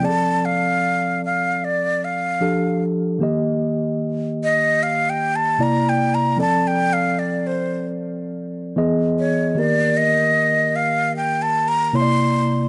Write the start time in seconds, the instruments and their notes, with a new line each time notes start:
0.00 tine electric piano F3 C4 G#4
0.04 tine electric piano D5, flute A5
0.09 tine electric piano A4
0.45 flute F5
1.25 flute F5
1.64 flute D5
2.04 flute F5
2.40 tine electric piano F3 D4 G4 A4
3.19 tine electric piano D#3 A#3 G4
3.23 tine electric piano D#5
4.44 flute D#5
4.83 flute F5
5.09 flute G5
5.36 flute A5
5.58 tine electric piano C3 A#3 E4 D5
5.63 flute A#5
5.89 flute G5
6.14 flute A#5
6.37 tine electric piano F3 C4 A4 D5, flute A5
6.67 flute G5
6.93 flute F5
7.19 flute D5
7.47 flute C5
8.76 tine electric piano E3 B3 G#4 D#5
9.19 flute C#5
9.55 tine electric piano D#3 A#3 G4, flute D5
9.59 tine electric piano A#4
9.97 flute D#5
10.76 flute F5
11.16 flute G5
11.42 flute A5
11.68 flute A#5
11.93 tine electric piano C3 A#3 E4 C#5, flute C6
12.02 tine electric piano D5